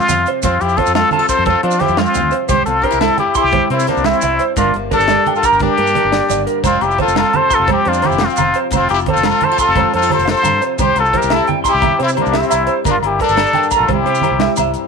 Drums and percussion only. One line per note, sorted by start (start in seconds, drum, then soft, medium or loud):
0.01 low conga soft
0.01 maracas soft
0.09 closed hi-hat medium
0.09 low conga medium
0.09 maracas loud
0.19 low conga soft
0.26 closed hi-hat medium
0.26 maracas soft
0.43 kick medium
0.43 closed hi-hat medium
0.43 high conga medium
0.43 low conga medium
0.43 maracas medium
0.61 closed hi-hat soft
0.61 maracas soft
0.69 maracas soft
0.78 kick medium
0.78 closed hi-hat soft
0.78 low conga loud
0.86 maracas medium
0.95 snare medium
0.95 closed hi-hat medium
0.95 high conga medium
1.04 low conga soft
1.11 closed hi-hat soft
1.11 low conga medium
1.29 kick medium
1.29 closed hi-hat soft
1.29 maracas loud
1.46 kick medium
1.46 closed hi-hat medium
1.46 high conga medium
1.46 low conga medium
1.55 low conga soft
1.63 closed hi-hat soft
1.71 maracas medium
1.80 snare soft
1.80 closed hi-hat soft
1.80 low conga medium
1.88 maracas soft
1.97 snare medium
1.97 closed hi-hat medium
1.97 high conga medium
2.06 low conga soft
2.06 maracas soft
2.14 closed hi-hat medium
2.14 low conga medium
2.14 maracas medium
2.27 low conga soft
2.31 closed hi-hat medium
2.31 maracas soft
2.49 kick medium
2.49 closed hi-hat medium
2.49 high conga medium
2.49 low conga medium
2.49 maracas medium
2.66 closed hi-hat medium
2.66 maracas soft
2.83 kick medium
2.83 closed hi-hat soft
2.92 maracas medium
3.01 snare medium
3.01 closed hi-hat medium
3.01 high conga medium
3.10 low conga soft
3.18 closed hi-hat soft
3.18 low conga medium
3.28 low conga soft
3.35 kick medium
3.35 closed hi-hat medium
3.35 maracas medium
3.52 kick medium
3.52 closed hi-hat medium
3.52 high conga loud
3.52 low conga loud
3.62 low conga soft
3.70 closed hi-hat soft
3.80 maracas medium
3.87 snare soft
3.87 closed hi-hat soft
3.87 low conga medium
3.97 maracas soft
4.04 snare medium
4.04 closed hi-hat medium
4.04 high conga medium
4.13 low conga soft
4.13 maracas soft
4.21 closed hi-hat soft
4.21 low conga medium
4.21 maracas medium
4.39 closed hi-hat soft
4.39 maracas soft
4.56 kick medium
4.56 closed hi-hat medium
4.56 high conga medium
4.56 low conga medium
4.56 maracas medium
4.66 low conga soft
4.74 closed hi-hat soft
4.74 low conga soft
4.91 kick medium
4.91 closed hi-hat soft
4.91 low conga medium
4.91 maracas soft
5.00 maracas medium
5.08 snare medium
5.08 closed hi-hat medium
5.08 high conga medium
5.08 maracas soft
5.27 closed hi-hat soft
5.27 low conga medium
5.35 low conga soft
5.35 maracas soft
5.43 kick medium
5.43 closed hi-hat soft
5.43 maracas medium
5.53 low conga soft
5.53 maracas soft
5.60 kick medium
5.60 closed hi-hat medium
5.60 high conga medium
5.60 low conga medium
5.78 closed hi-hat medium
5.87 maracas medium
5.95 closed hi-hat soft
5.95 low conga medium
6.05 low conga soft
6.12 snare medium
6.12 closed hi-hat medium
6.12 high conga medium
6.12 maracas soft
6.30 closed hi-hat soft
6.30 low conga medium
6.30 maracas medium
6.39 low conga soft
6.47 closed hi-hat medium
6.47 maracas soft
6.64 kick medium
6.64 closed hi-hat medium
6.64 high conga medium
6.64 low conga medium
6.64 low agogo medium
6.64 maracas medium
6.81 closed hi-hat soft
6.81 low agogo medium
6.81 maracas soft
6.91 maracas soft
6.98 kick medium
6.98 closed hi-hat soft
6.98 low conga loud
7.08 maracas medium
7.16 snare medium
7.16 closed hi-hat medium
7.16 high conga medium
7.16 low agogo medium
7.26 low conga soft
7.33 closed hi-hat soft
7.33 low conga medium
7.43 low conga soft
7.51 kick medium
7.51 closed hi-hat soft
7.51 low agogo medium
7.51 maracas medium
7.67 kick medium
7.67 closed hi-hat medium
7.67 high conga medium
7.67 low conga loud
7.67 low agogo medium
7.78 low conga soft
7.85 closed hi-hat soft
7.93 maracas medium
8.02 snare soft
8.02 closed hi-hat medium
8.02 low conga medium
8.02 low agogo medium
8.12 maracas soft
8.18 snare medium
8.18 closed hi-hat medium
8.18 high conga loud
8.30 maracas soft
8.36 closed hi-hat soft
8.36 low conga medium
8.36 low agogo medium
8.36 maracas medium
8.48 low conga soft
8.54 closed hi-hat medium
8.54 maracas soft
8.71 kick medium
8.71 closed hi-hat medium
8.71 high conga loud
8.71 low conga medium
8.71 low agogo medium
8.71 maracas medium
8.89 closed hi-hat soft
8.89 low agogo medium
8.89 maracas soft
8.99 maracas soft
9.06 kick medium
9.06 closed hi-hat medium
9.06 low conga loud
9.17 maracas medium
9.23 snare medium
9.23 closed hi-hat medium
9.23 high conga loud
9.23 low agogo medium
9.33 low conga soft
9.41 closed hi-hat soft
9.41 low conga medium
9.58 kick medium
9.58 closed hi-hat medium
9.58 low agogo medium
9.58 maracas medium
9.75 kick medium
9.75 closed hi-hat medium
9.75 high conga medium
9.75 low conga loud
9.75 low agogo medium
9.86 low conga soft
9.94 closed hi-hat soft
10.02 maracas medium
10.10 snare soft
10.10 closed hi-hat soft
10.10 low conga medium
10.10 low agogo medium
10.19 maracas soft
10.28 snare medium
10.28 closed hi-hat medium
10.28 high conga medium
10.37 low conga soft
10.37 maracas soft
10.44 closed hi-hat soft
10.44 low conga medium
10.44 low agogo medium
10.44 maracas medium
10.61 closed hi-hat medium
10.61 maracas soft
10.79 kick medium
10.79 closed hi-hat medium
10.79 high conga medium
10.79 low conga medium
10.79 low agogo medium
10.79 maracas medium
10.96 closed hi-hat soft
10.96 low agogo medium
10.96 maracas soft
11.05 maracas soft
11.13 kick medium
11.13 closed hi-hat medium
11.13 low conga medium
11.22 maracas medium
11.30 snare medium
11.30 closed hi-hat medium
11.30 high conga medium
11.30 low agogo medium
11.41 low conga soft
11.47 closed hi-hat soft
11.47 low conga medium
11.64 kick medium
11.64 closed hi-hat medium
11.64 low agogo medium
11.64 maracas medium
11.82 kick medium
11.82 closed hi-hat medium
11.82 high conga loud
11.82 low conga loud
11.82 low agogo medium
11.93 low conga soft
12.00 closed hi-hat soft
12.08 maracas medium
12.17 closed hi-hat soft
12.17 low conga medium
12.17 low agogo medium
12.26 maracas soft
12.34 snare medium
12.34 closed hi-hat medium
12.34 high conga medium
12.43 low conga soft
12.43 maracas soft
12.51 closed hi-hat medium
12.51 low agogo medium
12.51 maracas loud
12.62 low conga soft
12.67 closed hi-hat medium
12.67 maracas soft
12.85 kick medium
12.85 closed hi-hat medium
12.85 high conga medium
12.85 low conga loud
12.85 low agogo medium
12.85 maracas medium
13.03 closed hi-hat soft
13.03 low conga soft
13.03 low agogo medium
13.11 low conga soft
13.20 kick medium
13.20 closed hi-hat soft
13.29 low conga soft
13.29 maracas medium
13.37 snare medium
13.37 closed hi-hat medium
13.37 high conga medium
13.37 low agogo medium
13.37 maracas soft
13.46 maracas soft
13.53 closed hi-hat soft
13.53 low conga loud
13.63 maracas soft
13.71 kick medium
13.71 closed hi-hat soft
13.71 low conga soft
13.71 low agogo medium
13.71 maracas medium
13.88 kick medium
13.88 closed hi-hat medium
13.88 high conga loud
13.88 low conga loud
13.88 low agogo medium
13.98 low conga soft
14.07 closed hi-hat soft
14.15 maracas medium
14.21 closed hi-hat soft
14.21 low conga medium
14.21 low agogo medium
14.21 maracas soft
14.39 snare medium
14.39 closed hi-hat medium
14.39 high conga loud
14.39 low conga soft
14.57 closed hi-hat medium
14.57 low conga medium
14.57 low agogo medium
14.57 maracas loud
14.67 low conga soft
14.74 closed hi-hat medium
14.74 low conga soft
14.74 maracas soft